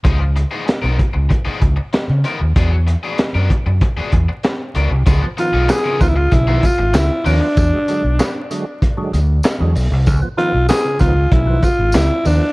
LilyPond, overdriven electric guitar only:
\new Staff \with { instrumentName = "Overdriven electric guitar" } { \time 4/4 \key des \mixolydian \tempo 4 = 96 <f ces' ees' aes'>16 r8 <f ces' ees' aes'>16 r16 <f ces' ees' bes'>16 r8. <f ces' ees' aes'>16 r4 <f ces' ees' bes'>16 r16 | <fis b d' gis'>16 r8 <fis b d' gis'>16 r16 <fis b d' bes'>16 r8. <fis b d' gis'>16 r4 <fis b d' bes'>16 r16 | <f ces' ees' aes'>16 r8 <f ces' ees' aes'>16 r16 <f ces' ees' bes'>16 r8. <f ces' ees' aes'>16 r4 <f ces' ees' bes'>16 r16 | r1 |
r1 | }